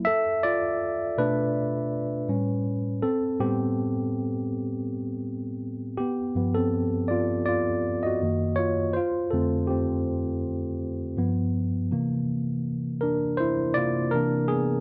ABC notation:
X:1
M:4/4
L:1/16
Q:"Swing 16ths" 1/4=81
K:Gmix
V:1 name="Tine electric piano"
[Ae]2 [Fd]4 [DB]8- [DB]2 | [CA]2 [B,G]8 z6 | [B,G]3 [CA]3 [Fd]2 [Fd]3 [^F^d]3 [=F^c]2 | [Fc]2 [CA]2 [CG]8 z4 |
z6 [D_B]2 [Ec]2 [Fd]2 [DB]2 [=B,^G]2 |]
V:2 name="Tine electric piano" clef=bass
z6 [B,,A,]2 z4 [A,,G,^C]4 | z2 [A,,G,C]12- [A,,G,C]2 | z2 [G,,F,B,]2 z8 [^F,,^D,^A,]4 | z2 [F,,D,A,]6 z4 [G,,F,B,]2 z2 |
[C,E,_B,]2 z8 [C,B,E]2 [C,E,B,]4 |]